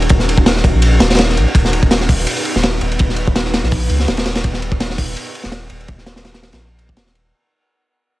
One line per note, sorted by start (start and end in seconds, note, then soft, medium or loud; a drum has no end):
0.00 1.51 C#4 medium
0.00 1.51 D#4 medium
0.00 7.29 F#4 medium
0.00 1.51 A#4 loud
0.00 ride soft
0.09 0.73 D#1 loud
0.09 kick loud
0.09 ride medium
0.19 snare soft
0.29 ride medium
0.38 kick loud
0.46 snare loud
0.46 ride medium
0.57 snare soft
0.64 kick loud
0.64 ride medium
0.74 0.99 A#1 medium
0.82 ride loud
1.00 1.38 D#1 loud
1.00 snare loud
1.00 ride medium
1.10 snare medium
1.10 ride medium
1.15 snare medium
1.15 ride medium
1.18 snare loud
1.18 ride loud
1.29 snare soft
1.37 1.46 A#1 loud
1.37 ride medium
1.55 2.26 D#1 loud
1.55 7.29 B3 medium
1.55 7.29 D#4 medium
1.55 7.29 B4 loud
1.55 kick loud
1.55 ride loud
1.65 snare soft
1.73 ride medium
1.83 kick loud
1.91 snare loud
1.91 ride medium
2.00 snare medium
2.09 kick loud
2.09 open hi-hat medium
2.27 ride medium
2.37 ride soft
2.45 ride medium
2.55 2.80 D#1 loud
2.55 snare soft
2.63 snare loud
2.63 ride medium
2.81 2.98 D#1 medium
2.81 ride medium
2.91 ride soft
2.99 3.62 D#1 loud
2.99 kick loud
2.99 ride medium
3.09 snare soft
3.16 ride medium
3.27 kick loud
3.35 snare loud
3.35 ride medium
3.45 snare soft
3.54 snare loud
3.54 ride medium
3.63 3.88 A#1 medium
3.63 snare soft
3.71 kick medium
3.71 open hi-hat medium
3.90 4.06 C#2 loud
3.90 ride medium
4.00 snare soft
4.08 4.43 D#1 loud
4.08 snare loud
4.08 ride medium
4.17 snare loud
4.17 ride medium
4.26 snare loud
4.26 ride medium
4.35 snare loud
4.35 ride medium
4.44 5.15 D#1 loud
4.44 kick loud
4.44 ride medium
4.54 snare soft
4.62 ride medium
4.72 kick loud
4.80 snare loud
4.80 ride loud
4.90 snare medium
4.98 kick loud
4.98 open hi-hat medium
5.16 ride loud
5.26 ride soft
5.35 ride medium
5.43 5.69 D#1 medium
5.43 snare medium
5.52 snare loud
5.52 ride medium
5.70 5.87 D#1 medium
5.70 ride medium
5.81 ride soft
5.88 6.51 D#1 loud
5.88 kick loud
5.88 ride medium
5.98 snare soft
6.06 snare loud
6.06 ride medium
6.16 snare loud
6.16 ride medium
6.25 snare loud
6.25 ride medium
6.34 snare loud
6.34 ride medium
6.43 snare loud
6.43 ride medium
6.53 6.98 A#1 medium
6.53 snare loud
6.53 ride medium
6.79 ride medium
6.89 kick medium
6.97 7.32 D#1 medium
6.97 snare loud
6.97 ride medium
7.06 snare medium
7.15 ride medium